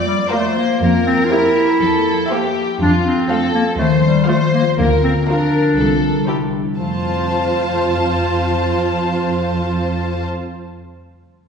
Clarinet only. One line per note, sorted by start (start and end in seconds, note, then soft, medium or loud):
0.07 0.18 G3 soft
0.32 0.56 A3 medium
0.57 0.81 A#3 medium
0.83 1.06 A#3 medium
1.07 1.27 C4 medium
1.25 1.33 F4 soft
1.31 2.56 E4 medium
2.80 2.92 D4 medium
3.06 3.54 C4 medium
3.54 3.65 A#3 medium
3.78 3.89 A3 medium
4.03 4.27 G3 medium
4.28 4.39 A3 medium
4.53 4.64 A#3 medium
4.77 4.89 A#3 medium
5.03 5.14 C4 medium
5.27 6.51 D4 medium
6.78 10.25 F4 soft